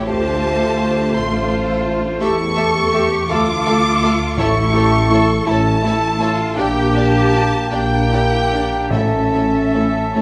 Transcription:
Already playing: G4
0.06 D2 A3 C4 F4 C5 A5
0.25 D4
0.41 F4
0.59 A4
0.78 F4
0.93 D4
1.12 A1 A3 C4 F4 C5 C6
1.31 D4
1.50 F4
1.65 A4
1.84 F4
2.00 D4
2.20 E2 A3 E4 G4 A4 E5 C#6
2.55 A3 G4 A4 E5
2.92 A3 G4 A4 E5
3.28 D2 A3 F4 A4 F5 D6
3.66 A3 F4 A4 F5
4.01 A3 F4 A4 F5
4.37 A1 A2 A3 E4 A4 C#5 C#6
4.41 A4
4.73 A3 E4 G4 C#5
4.77 A4
5.09 A3 E4 A4
5.14 A4 C#5
5.45 A1 A3 C#4 E4 A4 A5
5.50 A4 C#5
5.82 A3 E4 A4
5.86 A4 C#5
6.19 A3 E4 F4 A4 C#5
6.23 A4
6.56 A#1 A#3 D4 G4 D5 G5
6.60 G4
6.95 D4 G4 D5 A5
7.34 D4 G4 D5
7.70 A#1 A#3 D4 G4 D5 G5
8.11 D4 E4 G4 D5
8.50 D4 G4 D5
8.90 A1 A2 A3 C#4 A4 C#5 E5
8.94 A3 E4
9.34 A3 E4 A4 C#5
9.74 A3 E4 A4 C#5
10.14 A1 A3 E4 A4 C#5

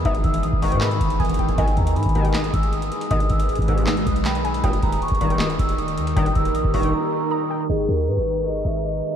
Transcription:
Already playing: D#3 E3 B3 G#4
0.05 E1 G#2 B2 D#3 E5 D#6, kick, closed hi-hat
0.15 closed hi-hat
0.24 E1 E6, kick, closed hi-hat
0.34 closed hi-hat
0.43 B1 D#6, closed hi-hat
0.53 E1, kick
0.62 G#2 B2 D#3 C#6, kick, open hi-hat
0.72 G#2, closed hi-hat
0.81 B5, snare, clap, closed hi-hat
0.91 closed hi-hat
1.01 E1, kick, closed hi-hat
1.10 closed hi-hat
1.20 E1 G#5 D#6, kick, closed hi-hat
1.25 closed hi-hat
1.29 kick, closed hi-hat
1.34 closed hi-hat
1.39 D#1 G5, kick, closed hi-hat
1.48 kick, closed hi-hat
1.58 G#1 D#2 B2 D#3 G#3 G#4 B4 D#5 G#5, kick, closed hi-hat
1.68 closed hi-hat
1.77 D#2 A#5, kick, closed hi-hat
1.87 closed hi-hat
1.96 G#2 B5, closed hi-hat
2.03 G#1, kick, closed hi-hat
2.09 closed hi-hat
2.15 D#2 B2 D#3, kick, closed hi-hat
2.25 closed hi-hat
2.34 D#6, snare, clap, closed hi-hat
2.44 closed hi-hat
2.54 G#1 E6, kick, closed hi-hat
2.63 closed hi-hat
2.72 D#6, closed hi-hat
2.82 closed hi-hat
2.92 closed hi-hat
3.01 closed hi-hat
3.11 G#1 D#2 B2 D#3 D#5 D#6, kick, closed hi-hat
3.20 closed hi-hat
3.30 G#1 E6, kick, closed hi-hat
3.40 closed hi-hat
3.49 D#6, closed hi-hat
3.56 G#1, kick, closed hi-hat
3.62 closed hi-hat
3.68 D#2 G#2 B2 E6, kick, closed hi-hat
3.78 closed hi-hat
3.87 snare, clap, closed hi-hat
3.97 closed hi-hat
4.06 B1 D#6, kick, closed hi-hat
4.16 closed hi-hat
4.25 G5 B5, snare, clap, closed hi-hat
4.35 closed hi-hat
4.45 G#5, closed hi-hat
4.54 closed hi-hat
4.64 D#1 D#2 G2 A#2 D#3 D#4 G4 A#4 G5 D#6, kick, closed hi-hat
4.73 closed hi-hat
4.83 D#1 A#5, kick, closed hi-hat
4.93 closed hi-hat
5.02 C#6, closed hi-hat
5.08 D#1, kick, closed hi-hat
5.15 closed hi-hat
5.21 G2 A#2 D#3, kick, closed hi-hat
5.30 closed hi-hat
5.39 D#6, snare, clap, closed hi-hat
5.50 closed hi-hat
5.59 D#1 E6, kick, closed hi-hat
5.69 closed hi-hat
5.78 D#6, closed hi-hat
5.88 closed hi-hat
5.98 D#2, closed hi-hat
6.07 closed hi-hat
6.16 D#1 G2 A#2 D#3 G5 D#6, kick, closed hi-hat
6.26 closed hi-hat
6.35 D#1 E6, kick, closed hi-hat
6.45 closed hi-hat
6.55 A#1 D#6, closed hi-hat
6.64 D#1, kick
6.74 G2 A#2 D#3 C#6, kick, open hi-hat
6.83 closed hi-hat
6.93 A#5
7.31 A#5 D#6
7.51 G5
7.70 G#1 D#3 G#3 G#4 B4 D#5 A#5
7.88 D#2 A#4
8.08 G#2 B4
8.17 G#1
8.46 D#5
8.65 G#1 E5
8.84 D#5

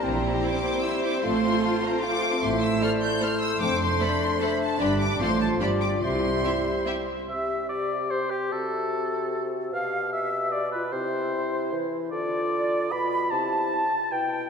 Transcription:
Already playing: G3
0.02 A#1 A#2 E3 A#3 C4 E4 C5 G5 A#5
0.14 C4
0.25 E4
0.34 G4
0.43 E4 D6
0.53 C4
0.64 A#3
0.76 C4
0.83 E4 E5 E6
0.94 G4
1.03 E4 D6
1.16 C4
1.22 A1 A2 F3 A3 C4 F4 F5 C6
1.36 C4
1.45 F4
1.54 A4
1.64 F4 A5
1.73 C4
1.83 A3 A#5
1.91 C4
2.02 F4 F5 D6
2.13 A4
2.22 F4
2.31 C4
2.42 A1 A2 A3 C4 E4 C5 E5 C6
2.62 E6
2.81 A3 E4 A4 C5 D5 F6
3.02 G6
3.20 A3 E4 A4 C5 F6
3.41 E6
3.59 F1 F2 A3 C4 D4 C5 D6
3.81 C6
4.00 A3 D4 A4 C5 D5 B5
4.21 C6
4.40 A3 D4 A4 C5 E5 B5
4.61 A5
4.80 G1 G2 G3 D4 G4 B4 D5 B5
5.00 D6
5.20 A1 A2 F3 A3 C4 F4 A4 C5 C6
5.40 A5
5.60 G1 G2 G3 D4 F4 G4 D5 B5
5.81 D6
6.01 C2 C3 G3 E4 C5 E5 C6
6.44 C4 E4 G4 E5
6.86 C4 E4 G4 E5
7.28 C3 G4 E5
7.69 D5
8.10 G4 C5
8.30 G4
8.51 C3 F#4 A4
9.72 B2 G4 F5
10.13 E5
10.52 G4 D5
10.72 F4 B4
10.92 C3 E4 C5
11.72 E3
12.11 D3 F4 D5
12.91 B2 F4 B5
13.31 C3 E4 A5
14.11 B2 E4 G5

